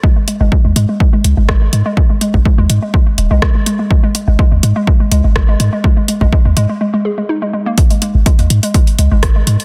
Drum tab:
HH |--x---x---x---x-|--x---x---x---x-|--x---x---x---x-|--x---x---------|
SD |------------r---|------------r---|------------r---|----------------|
BD |o---o---o---o---|o--oo---o---o---|o---o---o---o---|o--oo-----------|

HH |xxx-xxxxxxx-x-xx|
SD |------------r---|
BD |o---o---o---o---|